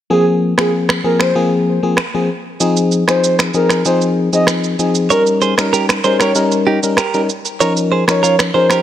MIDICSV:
0, 0, Header, 1, 5, 480
1, 0, Start_track
1, 0, Key_signature, -4, "major"
1, 0, Tempo, 625000
1, 80, Time_signature, 4, 2, 24, 8
1, 6775, End_track
2, 0, Start_track
2, 0, Title_t, "Soft synth lead"
2, 0, Program_c, 0, 80
2, 90, Note_on_c, 0, 68, 117
2, 192, Note_off_c, 0, 68, 0
2, 455, Note_on_c, 0, 68, 73
2, 549, Note_off_c, 0, 68, 0
2, 809, Note_on_c, 0, 70, 82
2, 911, Note_off_c, 0, 70, 0
2, 936, Note_on_c, 0, 72, 75
2, 1029, Note_off_c, 0, 72, 0
2, 2373, Note_on_c, 0, 72, 77
2, 2574, Note_off_c, 0, 72, 0
2, 2729, Note_on_c, 0, 70, 86
2, 2929, Note_off_c, 0, 70, 0
2, 2967, Note_on_c, 0, 72, 85
2, 3070, Note_off_c, 0, 72, 0
2, 3333, Note_on_c, 0, 75, 75
2, 3428, Note_off_c, 0, 75, 0
2, 3929, Note_on_c, 0, 70, 108
2, 4031, Note_off_c, 0, 70, 0
2, 4294, Note_on_c, 0, 70, 72
2, 4388, Note_off_c, 0, 70, 0
2, 4650, Note_on_c, 0, 72, 89
2, 4752, Note_off_c, 0, 72, 0
2, 4775, Note_on_c, 0, 73, 74
2, 4868, Note_off_c, 0, 73, 0
2, 6216, Note_on_c, 0, 73, 79
2, 6415, Note_off_c, 0, 73, 0
2, 6571, Note_on_c, 0, 72, 89
2, 6770, Note_off_c, 0, 72, 0
2, 6775, End_track
3, 0, Start_track
3, 0, Title_t, "Clean electric guitar"
3, 0, Program_c, 1, 27
3, 3919, Note_on_c, 1, 73, 93
3, 3926, Note_on_c, 1, 70, 70
3, 4012, Note_off_c, 1, 73, 0
3, 4016, Note_off_c, 1, 70, 0
3, 4160, Note_on_c, 1, 72, 82
3, 4166, Note_on_c, 1, 68, 63
3, 4252, Note_off_c, 1, 72, 0
3, 4256, Note_off_c, 1, 68, 0
3, 4400, Note_on_c, 1, 70, 89
3, 4406, Note_on_c, 1, 67, 72
3, 4492, Note_off_c, 1, 70, 0
3, 4496, Note_off_c, 1, 67, 0
3, 4640, Note_on_c, 1, 72, 74
3, 4646, Note_on_c, 1, 68, 57
3, 4732, Note_off_c, 1, 72, 0
3, 4736, Note_off_c, 1, 68, 0
3, 4764, Note_on_c, 1, 70, 70
3, 4770, Note_on_c, 1, 67, 55
3, 4849, Note_off_c, 1, 70, 0
3, 4853, Note_off_c, 1, 67, 0
3, 5120, Note_on_c, 1, 67, 75
3, 5125, Note_on_c, 1, 63, 60
3, 5212, Note_off_c, 1, 67, 0
3, 5215, Note_off_c, 1, 63, 0
3, 5359, Note_on_c, 1, 70, 76
3, 5366, Note_on_c, 1, 67, 58
3, 5536, Note_off_c, 1, 70, 0
3, 5540, Note_off_c, 1, 67, 0
3, 5840, Note_on_c, 1, 73, 94
3, 5845, Note_on_c, 1, 70, 74
3, 5932, Note_off_c, 1, 73, 0
3, 5935, Note_off_c, 1, 70, 0
3, 6079, Note_on_c, 1, 72, 78
3, 6086, Note_on_c, 1, 68, 61
3, 6172, Note_off_c, 1, 72, 0
3, 6176, Note_off_c, 1, 68, 0
3, 6319, Note_on_c, 1, 70, 84
3, 6325, Note_on_c, 1, 65, 69
3, 6412, Note_off_c, 1, 70, 0
3, 6415, Note_off_c, 1, 65, 0
3, 6560, Note_on_c, 1, 72, 75
3, 6567, Note_on_c, 1, 68, 60
3, 6652, Note_off_c, 1, 72, 0
3, 6656, Note_off_c, 1, 68, 0
3, 6686, Note_on_c, 1, 70, 69
3, 6692, Note_on_c, 1, 67, 55
3, 6770, Note_off_c, 1, 70, 0
3, 6774, Note_off_c, 1, 67, 0
3, 6775, End_track
4, 0, Start_track
4, 0, Title_t, "FM electric piano"
4, 0, Program_c, 2, 5
4, 77, Note_on_c, 2, 53, 84
4, 78, Note_on_c, 2, 58, 75
4, 80, Note_on_c, 2, 60, 76
4, 81, Note_on_c, 2, 68, 93
4, 413, Note_off_c, 2, 53, 0
4, 414, Note_off_c, 2, 58, 0
4, 415, Note_off_c, 2, 60, 0
4, 415, Note_off_c, 2, 68, 0
4, 442, Note_on_c, 2, 53, 67
4, 443, Note_on_c, 2, 58, 63
4, 444, Note_on_c, 2, 60, 64
4, 446, Note_on_c, 2, 68, 76
4, 771, Note_off_c, 2, 53, 0
4, 771, Note_off_c, 2, 58, 0
4, 772, Note_off_c, 2, 60, 0
4, 773, Note_off_c, 2, 68, 0
4, 797, Note_on_c, 2, 53, 71
4, 798, Note_on_c, 2, 58, 65
4, 800, Note_on_c, 2, 60, 64
4, 801, Note_on_c, 2, 68, 81
4, 1020, Note_off_c, 2, 53, 0
4, 1021, Note_off_c, 2, 58, 0
4, 1022, Note_off_c, 2, 60, 0
4, 1022, Note_off_c, 2, 68, 0
4, 1038, Note_on_c, 2, 53, 85
4, 1038, Note_on_c, 2, 58, 85
4, 1040, Note_on_c, 2, 60, 78
4, 1042, Note_on_c, 2, 68, 96
4, 1374, Note_off_c, 2, 53, 0
4, 1374, Note_off_c, 2, 58, 0
4, 1375, Note_off_c, 2, 60, 0
4, 1376, Note_off_c, 2, 68, 0
4, 1402, Note_on_c, 2, 53, 74
4, 1404, Note_on_c, 2, 58, 66
4, 1405, Note_on_c, 2, 60, 64
4, 1407, Note_on_c, 2, 68, 82
4, 1517, Note_off_c, 2, 53, 0
4, 1518, Note_off_c, 2, 58, 0
4, 1518, Note_off_c, 2, 60, 0
4, 1519, Note_off_c, 2, 68, 0
4, 1644, Note_on_c, 2, 53, 73
4, 1646, Note_on_c, 2, 58, 65
4, 1647, Note_on_c, 2, 60, 63
4, 1649, Note_on_c, 2, 68, 81
4, 1758, Note_off_c, 2, 53, 0
4, 1759, Note_off_c, 2, 58, 0
4, 1759, Note_off_c, 2, 60, 0
4, 1760, Note_off_c, 2, 68, 0
4, 1998, Note_on_c, 2, 53, 88
4, 1999, Note_on_c, 2, 60, 79
4, 2001, Note_on_c, 2, 63, 82
4, 2002, Note_on_c, 2, 68, 96
4, 2334, Note_off_c, 2, 53, 0
4, 2335, Note_off_c, 2, 60, 0
4, 2335, Note_off_c, 2, 63, 0
4, 2336, Note_off_c, 2, 68, 0
4, 2362, Note_on_c, 2, 53, 70
4, 2365, Note_on_c, 2, 60, 63
4, 2366, Note_on_c, 2, 63, 65
4, 2368, Note_on_c, 2, 68, 75
4, 2691, Note_off_c, 2, 53, 0
4, 2692, Note_off_c, 2, 60, 0
4, 2693, Note_off_c, 2, 63, 0
4, 2694, Note_off_c, 2, 68, 0
4, 2718, Note_on_c, 2, 53, 73
4, 2720, Note_on_c, 2, 60, 66
4, 2721, Note_on_c, 2, 63, 65
4, 2722, Note_on_c, 2, 68, 79
4, 2941, Note_off_c, 2, 53, 0
4, 2941, Note_off_c, 2, 60, 0
4, 2942, Note_off_c, 2, 63, 0
4, 2943, Note_off_c, 2, 68, 0
4, 2958, Note_on_c, 2, 53, 88
4, 2959, Note_on_c, 2, 60, 83
4, 2961, Note_on_c, 2, 63, 80
4, 2962, Note_on_c, 2, 68, 97
4, 3294, Note_off_c, 2, 53, 0
4, 3294, Note_off_c, 2, 60, 0
4, 3296, Note_off_c, 2, 63, 0
4, 3296, Note_off_c, 2, 68, 0
4, 3321, Note_on_c, 2, 53, 72
4, 3323, Note_on_c, 2, 60, 67
4, 3325, Note_on_c, 2, 63, 65
4, 3325, Note_on_c, 2, 68, 78
4, 3651, Note_off_c, 2, 53, 0
4, 3651, Note_off_c, 2, 60, 0
4, 3652, Note_off_c, 2, 63, 0
4, 3653, Note_off_c, 2, 68, 0
4, 3677, Note_on_c, 2, 53, 72
4, 3678, Note_on_c, 2, 60, 66
4, 3680, Note_on_c, 2, 63, 67
4, 3682, Note_on_c, 2, 68, 79
4, 3900, Note_off_c, 2, 53, 0
4, 3901, Note_off_c, 2, 60, 0
4, 3902, Note_off_c, 2, 63, 0
4, 3902, Note_off_c, 2, 68, 0
4, 3919, Note_on_c, 2, 55, 89
4, 3921, Note_on_c, 2, 61, 83
4, 3923, Note_on_c, 2, 63, 79
4, 3924, Note_on_c, 2, 70, 98
4, 4255, Note_off_c, 2, 55, 0
4, 4255, Note_off_c, 2, 61, 0
4, 4256, Note_off_c, 2, 63, 0
4, 4257, Note_off_c, 2, 70, 0
4, 4283, Note_on_c, 2, 55, 70
4, 4285, Note_on_c, 2, 61, 68
4, 4287, Note_on_c, 2, 63, 65
4, 4288, Note_on_c, 2, 70, 74
4, 4612, Note_off_c, 2, 55, 0
4, 4613, Note_off_c, 2, 61, 0
4, 4614, Note_off_c, 2, 63, 0
4, 4614, Note_off_c, 2, 70, 0
4, 4638, Note_on_c, 2, 55, 75
4, 4640, Note_on_c, 2, 61, 67
4, 4642, Note_on_c, 2, 63, 65
4, 4643, Note_on_c, 2, 70, 83
4, 4861, Note_off_c, 2, 55, 0
4, 4862, Note_off_c, 2, 61, 0
4, 4863, Note_off_c, 2, 63, 0
4, 4863, Note_off_c, 2, 70, 0
4, 4878, Note_on_c, 2, 55, 88
4, 4879, Note_on_c, 2, 61, 86
4, 4881, Note_on_c, 2, 63, 84
4, 4882, Note_on_c, 2, 70, 97
4, 5214, Note_off_c, 2, 55, 0
4, 5214, Note_off_c, 2, 61, 0
4, 5215, Note_off_c, 2, 63, 0
4, 5216, Note_off_c, 2, 70, 0
4, 5244, Note_on_c, 2, 55, 71
4, 5246, Note_on_c, 2, 61, 67
4, 5247, Note_on_c, 2, 63, 65
4, 5248, Note_on_c, 2, 70, 79
4, 5358, Note_off_c, 2, 55, 0
4, 5359, Note_off_c, 2, 61, 0
4, 5359, Note_off_c, 2, 63, 0
4, 5360, Note_off_c, 2, 70, 0
4, 5484, Note_on_c, 2, 55, 70
4, 5486, Note_on_c, 2, 61, 64
4, 5487, Note_on_c, 2, 63, 68
4, 5489, Note_on_c, 2, 70, 81
4, 5598, Note_off_c, 2, 55, 0
4, 5599, Note_off_c, 2, 61, 0
4, 5599, Note_off_c, 2, 63, 0
4, 5600, Note_off_c, 2, 70, 0
4, 5839, Note_on_c, 2, 53, 86
4, 5841, Note_on_c, 2, 61, 76
4, 5843, Note_on_c, 2, 63, 80
4, 5844, Note_on_c, 2, 70, 95
4, 6174, Note_off_c, 2, 53, 0
4, 6175, Note_off_c, 2, 61, 0
4, 6176, Note_off_c, 2, 63, 0
4, 6177, Note_off_c, 2, 70, 0
4, 6204, Note_on_c, 2, 53, 73
4, 6205, Note_on_c, 2, 61, 64
4, 6207, Note_on_c, 2, 63, 64
4, 6208, Note_on_c, 2, 70, 81
4, 6532, Note_off_c, 2, 53, 0
4, 6533, Note_off_c, 2, 61, 0
4, 6533, Note_off_c, 2, 63, 0
4, 6534, Note_off_c, 2, 70, 0
4, 6560, Note_on_c, 2, 53, 74
4, 6561, Note_on_c, 2, 61, 66
4, 6563, Note_on_c, 2, 63, 66
4, 6564, Note_on_c, 2, 70, 81
4, 6775, Note_off_c, 2, 53, 0
4, 6775, Note_off_c, 2, 61, 0
4, 6775, Note_off_c, 2, 63, 0
4, 6775, Note_off_c, 2, 70, 0
4, 6775, End_track
5, 0, Start_track
5, 0, Title_t, "Drums"
5, 443, Note_on_c, 9, 37, 90
5, 451, Note_on_c, 9, 26, 68
5, 520, Note_off_c, 9, 37, 0
5, 528, Note_off_c, 9, 26, 0
5, 683, Note_on_c, 9, 37, 97
5, 691, Note_on_c, 9, 26, 74
5, 760, Note_off_c, 9, 37, 0
5, 768, Note_off_c, 9, 26, 0
5, 918, Note_on_c, 9, 37, 82
5, 926, Note_on_c, 9, 26, 68
5, 995, Note_off_c, 9, 37, 0
5, 1002, Note_off_c, 9, 26, 0
5, 1511, Note_on_c, 9, 37, 89
5, 1519, Note_on_c, 9, 26, 72
5, 1588, Note_off_c, 9, 37, 0
5, 1596, Note_off_c, 9, 26, 0
5, 1999, Note_on_c, 9, 82, 68
5, 2076, Note_off_c, 9, 82, 0
5, 2124, Note_on_c, 9, 82, 55
5, 2201, Note_off_c, 9, 82, 0
5, 2239, Note_on_c, 9, 82, 44
5, 2315, Note_off_c, 9, 82, 0
5, 2362, Note_on_c, 9, 37, 88
5, 2368, Note_on_c, 9, 82, 48
5, 2370, Note_on_c, 9, 26, 71
5, 2439, Note_off_c, 9, 37, 0
5, 2445, Note_off_c, 9, 82, 0
5, 2447, Note_off_c, 9, 26, 0
5, 2486, Note_on_c, 9, 82, 72
5, 2563, Note_off_c, 9, 82, 0
5, 2602, Note_on_c, 9, 37, 91
5, 2603, Note_on_c, 9, 82, 56
5, 2610, Note_on_c, 9, 26, 79
5, 2679, Note_off_c, 9, 37, 0
5, 2680, Note_off_c, 9, 82, 0
5, 2687, Note_off_c, 9, 26, 0
5, 2717, Note_on_c, 9, 82, 45
5, 2793, Note_off_c, 9, 82, 0
5, 2837, Note_on_c, 9, 37, 83
5, 2845, Note_on_c, 9, 26, 68
5, 2849, Note_on_c, 9, 82, 53
5, 2914, Note_off_c, 9, 37, 0
5, 2922, Note_off_c, 9, 26, 0
5, 2926, Note_off_c, 9, 82, 0
5, 2957, Note_on_c, 9, 82, 69
5, 3034, Note_off_c, 9, 82, 0
5, 3083, Note_on_c, 9, 82, 49
5, 3160, Note_off_c, 9, 82, 0
5, 3325, Note_on_c, 9, 82, 55
5, 3402, Note_off_c, 9, 82, 0
5, 3432, Note_on_c, 9, 37, 94
5, 3439, Note_on_c, 9, 26, 69
5, 3440, Note_on_c, 9, 82, 66
5, 3508, Note_off_c, 9, 37, 0
5, 3516, Note_off_c, 9, 26, 0
5, 3516, Note_off_c, 9, 82, 0
5, 3562, Note_on_c, 9, 82, 48
5, 3639, Note_off_c, 9, 82, 0
5, 3680, Note_on_c, 9, 82, 50
5, 3757, Note_off_c, 9, 82, 0
5, 3800, Note_on_c, 9, 82, 55
5, 3876, Note_off_c, 9, 82, 0
5, 3918, Note_on_c, 9, 82, 66
5, 3995, Note_off_c, 9, 82, 0
5, 4044, Note_on_c, 9, 82, 54
5, 4121, Note_off_c, 9, 82, 0
5, 4158, Note_on_c, 9, 82, 46
5, 4235, Note_off_c, 9, 82, 0
5, 4283, Note_on_c, 9, 37, 88
5, 4289, Note_on_c, 9, 82, 50
5, 4291, Note_on_c, 9, 26, 71
5, 4359, Note_off_c, 9, 37, 0
5, 4365, Note_off_c, 9, 82, 0
5, 4367, Note_off_c, 9, 26, 0
5, 4405, Note_on_c, 9, 82, 77
5, 4482, Note_off_c, 9, 82, 0
5, 4523, Note_on_c, 9, 37, 95
5, 4524, Note_on_c, 9, 82, 56
5, 4531, Note_on_c, 9, 26, 76
5, 4600, Note_off_c, 9, 37, 0
5, 4601, Note_off_c, 9, 82, 0
5, 4608, Note_off_c, 9, 26, 0
5, 4637, Note_on_c, 9, 82, 45
5, 4714, Note_off_c, 9, 82, 0
5, 4758, Note_on_c, 9, 37, 81
5, 4766, Note_on_c, 9, 26, 67
5, 4770, Note_on_c, 9, 82, 51
5, 4835, Note_off_c, 9, 37, 0
5, 4843, Note_off_c, 9, 26, 0
5, 4847, Note_off_c, 9, 82, 0
5, 4877, Note_on_c, 9, 82, 71
5, 4954, Note_off_c, 9, 82, 0
5, 5004, Note_on_c, 9, 82, 48
5, 5081, Note_off_c, 9, 82, 0
5, 5246, Note_on_c, 9, 82, 54
5, 5322, Note_off_c, 9, 82, 0
5, 5352, Note_on_c, 9, 37, 92
5, 5359, Note_on_c, 9, 26, 70
5, 5360, Note_on_c, 9, 82, 69
5, 5428, Note_off_c, 9, 37, 0
5, 5436, Note_off_c, 9, 26, 0
5, 5436, Note_off_c, 9, 82, 0
5, 5483, Note_on_c, 9, 82, 48
5, 5560, Note_off_c, 9, 82, 0
5, 5601, Note_on_c, 9, 82, 52
5, 5678, Note_off_c, 9, 82, 0
5, 5722, Note_on_c, 9, 82, 56
5, 5799, Note_off_c, 9, 82, 0
5, 5841, Note_on_c, 9, 82, 68
5, 5917, Note_off_c, 9, 82, 0
5, 5965, Note_on_c, 9, 82, 56
5, 6042, Note_off_c, 9, 82, 0
5, 6203, Note_on_c, 9, 37, 85
5, 6209, Note_on_c, 9, 82, 51
5, 6211, Note_on_c, 9, 26, 70
5, 6280, Note_off_c, 9, 37, 0
5, 6286, Note_off_c, 9, 82, 0
5, 6288, Note_off_c, 9, 26, 0
5, 6327, Note_on_c, 9, 82, 75
5, 6403, Note_off_c, 9, 82, 0
5, 6444, Note_on_c, 9, 37, 96
5, 6444, Note_on_c, 9, 82, 56
5, 6452, Note_on_c, 9, 26, 74
5, 6520, Note_off_c, 9, 37, 0
5, 6521, Note_off_c, 9, 82, 0
5, 6528, Note_off_c, 9, 26, 0
5, 6678, Note_on_c, 9, 37, 85
5, 6686, Note_on_c, 9, 26, 67
5, 6690, Note_on_c, 9, 82, 51
5, 6755, Note_off_c, 9, 37, 0
5, 6763, Note_off_c, 9, 26, 0
5, 6767, Note_off_c, 9, 82, 0
5, 6775, End_track
0, 0, End_of_file